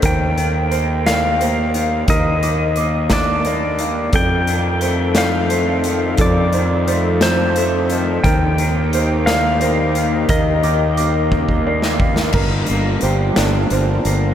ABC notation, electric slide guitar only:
X:1
M:6/8
L:1/8
Q:3/8=58
K:Eblyd
V:1 name="Electric slide guitar"
g3 f3 | e3 d2 z | g3 f3 | d3 c2 z |
g3 f3 | e4 z2 | z6 |]